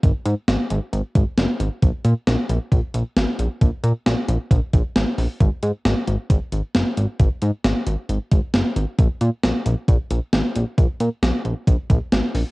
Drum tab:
HH |xxxxxxxx|xxxxxxxx|xxxxxxxo|xxxxxxxx|
SD |--o---o-|--o---o-|--o---o-|--o---o-|
BD |o----o--|o---o---|o---oo--|o---o---|

HH |xxxxxxxx|xxxxxxxx|xxxxxxxo|
SD |--o---o-|--o---o-|--o---o-|
BD |o----o--|o---o---|o---oo--|